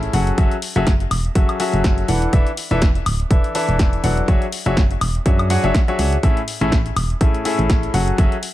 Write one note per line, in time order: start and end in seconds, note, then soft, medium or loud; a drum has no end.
0.00 0.11 A2 medium
0.00 0.11 C#4 medium
0.00 0.11 E4 medium
0.00 0.11 G#4 medium
0.00 0.11 A4 medium
0.00 0.11 E5 medium
0.00 closed hi-hat soft
0.13 0.32 F#1 loud
0.13 0.35 F#3 medium
0.13 0.35 C#4 medium
0.13 0.35 F#4 medium
0.13 0.35 G#4 medium
0.13 0.35 A4 medium
0.13 0.35 F#5 medium
0.13 open hi-hat medium
0.27 closed hi-hat soft
0.38 0.48 F#1 loud
0.38 0.54 F#3 medium
0.38 0.54 C#4 medium
0.38 0.54 F#4 medium
0.38 0.54 G#4 medium
0.38 0.54 A4 medium
0.38 0.54 E5 loud
0.38 kick loud
0.38 closed hi-hat medium
0.51 closed hi-hat soft
0.62 open hi-hat loud
0.76 1.06 F#1 loud
0.76 0.90 F#3 medium
0.76 0.90 C#4 medium
0.76 0.90 F#4 medium
0.76 0.90 G#4 medium
0.76 0.90 A4 medium
0.76 0.90 E5 loud
0.76 closed hi-hat soft
0.87 kick loud
0.87 snare loud
0.87 closed hi-hat medium
1.00 closed hi-hat soft
1.11 1.29 E1 medium
1.11 open hi-hat medium
1.11 high woodblock medium
1.25 closed hi-hat soft
1.35 1.45 F#1 medium
1.35 1.57 F#3 medium
1.35 1.57 C#4 medium
1.35 1.57 F#4 medium
1.35 1.57 G#4 medium
1.35 1.57 A4 medium
1.35 1.57 E5 medium
1.35 kick loud
1.35 closed hi-hat medium
1.49 closed hi-hat soft
1.49 high woodblock medium
1.60 2.06 F#3 medium
1.60 2.06 C#4 medium
1.60 2.06 F#4 medium
1.60 2.06 G#4 medium
1.60 2.06 A4 medium
1.60 2.06 E5 loud
1.60 open hi-hat loud
1.73 2.04 F#1 medium
1.73 closed hi-hat soft
1.84 kick loud
1.84 snare loud
1.84 closed hi-hat medium
1.98 closed hi-hat soft
2.08 2.27 E1 loud
2.08 2.30 E3 medium
2.08 2.30 D4 medium
2.08 2.30 E4 medium
2.08 2.30 A4 medium
2.08 2.30 B4 medium
2.08 2.30 F#5 medium
2.08 open hi-hat medium
2.22 closed hi-hat soft
2.33 2.43 E1 loud
2.33 2.49 E3 medium
2.33 2.49 D4 medium
2.33 2.49 E4 medium
2.33 2.49 A4 medium
2.33 2.49 B4 medium
2.33 2.49 E5 loud
2.33 kick loud
2.33 closed hi-hat medium
2.47 closed hi-hat soft
2.57 open hi-hat loud
2.71 3.01 E1 loud
2.71 2.85 E3 loud
2.71 2.85 D4 medium
2.71 2.85 E4 medium
2.71 2.85 A4 medium
2.71 2.85 B4 medium
2.71 2.85 E5 loud
2.71 closed hi-hat soft
2.82 kick loud
2.82 snare loud
2.82 closed hi-hat medium
2.95 closed hi-hat soft
3.06 3.24 D1 medium
3.06 open hi-hat medium
3.06 high woodblock medium
3.20 closed hi-hat soft
3.31 3.40 E1 medium
3.31 3.52 E3 medium
3.31 3.52 D4 medium
3.31 3.52 E4 medium
3.31 3.52 A4 medium
3.31 3.52 B4 medium
3.31 3.52 E5 medium
3.31 kick loud
3.31 closed hi-hat medium
3.44 closed hi-hat soft
3.55 4.01 E3 medium
3.55 4.01 D4 medium
3.55 4.01 E4 medium
3.55 4.01 A4 medium
3.55 4.01 B4 medium
3.55 4.01 E5 loud
3.55 open hi-hat loud
3.68 3.99 E1 medium
3.68 closed hi-hat soft
3.79 kick loud
3.79 snare loud
3.79 closed hi-hat medium
3.93 closed hi-hat soft
4.04 4.22 E1 loud
4.04 4.26 F#3 medium
4.04 4.26 D4 medium
4.04 4.26 E4 medium
4.04 4.26 A4 medium
4.04 4.26 B4 medium
4.04 4.26 F#5 medium
4.04 open hi-hat medium
4.17 closed hi-hat soft
4.28 4.38 F#1 loud
4.28 4.44 F#3 medium
4.28 4.44 D4 medium
4.28 4.44 F#4 medium
4.28 4.44 G#4 medium
4.28 4.44 C#5 medium
4.28 4.44 E5 loud
4.28 kick loud
4.28 closed hi-hat medium
4.42 closed hi-hat soft
4.52 open hi-hat loud
4.66 4.96 F#1 loud
4.66 4.80 F#3 medium
4.66 4.80 D4 medium
4.66 4.80 F#4 medium
4.66 4.80 G#4 medium
4.66 4.80 C#5 medium
4.66 4.80 E5 loud
4.66 closed hi-hat soft
4.77 kick loud
4.77 snare loud
4.77 closed hi-hat medium
4.91 closed hi-hat soft
5.01 5.19 E1 medium
5.01 open hi-hat medium
5.01 high woodblock medium
5.15 closed hi-hat soft
5.26 5.57 F#2 loud
5.26 5.48 F#3 medium
5.26 5.48 D4 medium
5.26 5.48 F#4 medium
5.26 5.47 G#4 medium
5.26 5.47 C#5 medium
5.26 5.47 E5 medium
5.26 kick loud
5.26 closed hi-hat medium
5.39 closed hi-hat soft
5.39 high woodblock medium
5.50 5.62 F#3 medium
5.50 5.62 D4 medium
5.50 5.62 F#4 medium
5.50 5.62 G#4 medium
5.50 5.62 C#5 medium
5.50 5.62 F#5 loud
5.50 open hi-hat loud
5.64 5.71 F#1 medium
5.64 5.78 F#3 medium
5.64 5.78 D4 medium
5.64 5.78 F#4 medium
5.64 5.78 G#4 medium
5.64 5.78 C#5 medium
5.64 5.78 E5 loud
5.64 closed hi-hat soft
5.74 kick loud
5.74 snare loud
5.74 closed hi-hat medium
5.88 5.97 F#3 medium
5.88 5.97 D4 medium
5.88 5.97 F#4 medium
5.88 5.97 G#4 medium
5.88 5.97 C#5 medium
5.88 5.97 E5 loud
5.88 closed hi-hat soft
5.99 6.17 C#2 medium
5.99 6.15 D4 medium
5.99 6.15 F#4 medium
5.99 6.15 G#4 medium
5.99 6.15 C#5 medium
5.99 6.15 E5 medium
5.99 open hi-hat medium
6.13 closed hi-hat soft
6.23 6.33 A1 loud
6.23 6.39 A2 medium
6.23 6.39 C#4 medium
6.23 6.39 E4 medium
6.23 6.39 G#4 medium
6.23 6.39 A4 medium
6.23 6.39 E5 loud
6.23 kick loud
6.23 closed hi-hat medium
6.37 closed hi-hat soft
6.48 open hi-hat loud
6.61 6.91 A1 loud
6.61 6.75 A2 loud
6.61 6.75 C#4 medium
6.61 6.75 E4 medium
6.61 6.75 G#4 medium
6.61 6.75 A4 medium
6.61 6.75 E5 loud
6.61 closed hi-hat soft
6.72 kick loud
6.72 snare loud
6.72 closed hi-hat medium
6.86 closed hi-hat soft
6.96 7.15 E1 medium
6.96 open hi-hat medium
6.96 high woodblock medium
7.10 closed hi-hat soft
7.21 7.31 A1 medium
7.21 7.43 A2 medium
7.21 7.43 C#4 medium
7.21 7.43 E4 medium
7.21 7.43 G#4 medium
7.21 7.43 A4 medium
7.21 7.43 E5 medium
7.21 kick loud
7.21 closed hi-hat medium
7.35 closed hi-hat soft
7.45 7.91 A2 medium
7.45 7.91 C#4 medium
7.45 7.91 E4 medium
7.45 7.91 G#4 medium
7.45 7.91 A4 medium
7.45 7.91 E5 medium
7.45 open hi-hat loud
7.59 7.89 A1 medium
7.59 closed hi-hat soft
7.70 kick loud
7.70 snare loud
7.70 closed hi-hat medium
7.83 closed hi-hat soft
7.94 8.12 F#1 medium
7.94 8.16 F#3 medium
7.94 8.16 C#4 medium
7.94 8.16 F#4 medium
7.94 8.16 G#4 medium
7.94 8.16 A4 medium
7.94 8.16 F#5 medium
7.94 open hi-hat medium
8.08 closed hi-hat soft
8.18 8.28 F#1 loud
8.18 8.35 F#3 medium
8.18 8.34 C#4 medium
8.18 8.35 F#4 medium
8.18 8.35 G#4 medium
8.18 8.35 A4 medium
8.18 8.34 E5 loud
8.18 kick loud
8.18 closed hi-hat medium
8.32 closed hi-hat soft
8.43 open hi-hat loud